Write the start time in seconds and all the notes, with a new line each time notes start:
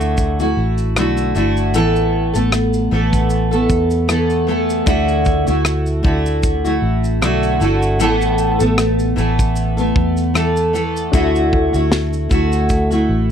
Already playing: D2 D3 A3 E4 F#4
0.01 shaker
0.17 kick, shaker
0.40 A3 E4 F#4, shaker
0.57 A1
0.78 shaker
0.96 B1 D3 A3 E4 F#4, cross-stick, shaker
1.17 shaker
1.35 G1 D3 A3 E4 F#4, shaker
1.57 shaker
1.74 A1 A2 E3 A3 B3 A4, shaker
1.96 shaker
2.34 A1 A3 B3 A4, shaker
2.52 cross-stick, shaker
2.73 shaker
2.91 A1 E3 A3 B3 A4
3.13 kick, shaker
3.30 shaker
3.51 A3 B3 A4, shaker
3.69 E2, kick, shaker
3.91 shaker
4.08 E3 A3 B3 A4, cross-stick, shaker
4.30 shaker
4.47 E3 A3 B3 A4, cross-stick
4.70 shaker
4.86 D2 D3 A3 E4 F#4, kick, shaker
5.08 shaker
5.25 kick, shaker
5.47 D2 A3 E4 F#4, shaker
5.65 cross-stick, shaker
5.86 shaker
6.03 D2 D3 A3 E4 F#4, kick
6.26 shaker
6.43 kick, shaker
6.64 A3 E4 F#4, shaker
6.82 A1
7.04 shaker
7.21 B1 D3 A3 E4 F#4, cross-stick, shaker
7.43 shaker
7.60 G1 D3 A3 E4 F#4, shaker
7.82 shaker
8.00 A1 A2 E3 A3 B3 A4, shaker
8.21 shaker
8.38 shaker
8.59 A1 A3 B3 A4, shaker
8.78 cross-stick, shaker
8.99 shaker
9.16 A1 E3 A3 B3 A4, shaker
9.39 kick, shaker
9.56 shaker
9.77 A3 B3 A4, shaker
9.96 E2, kick
10.17 shaker
10.34 E3 A3 B3 A4, cross-stick, shaker
10.57 shaker
10.73 E3 A3 B3 A4, shaker
10.96 shaker
11.12 D2 D3 A3 D4 E4 F#4 A4 E5, kick, shaker
11.36 shaker
11.53 kick
11.73 D2 A3 E4 F#4, shaker
11.92 snare, shaker
12.13 shaker
12.29 D2 D3 A3 E4 F#4, kick, shaker
12.52 shaker
12.69 kick, shaker
12.90 A3 E4 F#4, shaker
13.09 A1